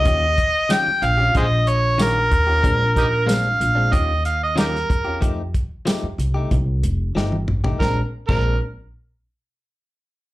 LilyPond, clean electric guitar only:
\new Staff \with { instrumentName = "Clean electric guitar" } { \time 4/4 \key ees \major \tempo 4 = 93 <ees des' f' g'>16 r8. <ees des' f' g'>16 r8 <des' f' g'>16 r4 <ees des' f' g'>16 r8 <des' f' g'>16 | <bes, aes c' d'>16 r8. <bes, aes c' d'>16 r8 <aes c' d'>16 <ees des' f' g'>16 r8. <ees des' f' g'>16 r8 <des' f' g'>16 | <f a ees' g'>16 r8. <f a ees' g'>16 r8 <a ees' g'>16 r4 <f a ees' g'>16 r8 <a ees' g'>16 | <bes, aes c' d'>16 r8 <bes, aes c' d'>8 r2 r8. | }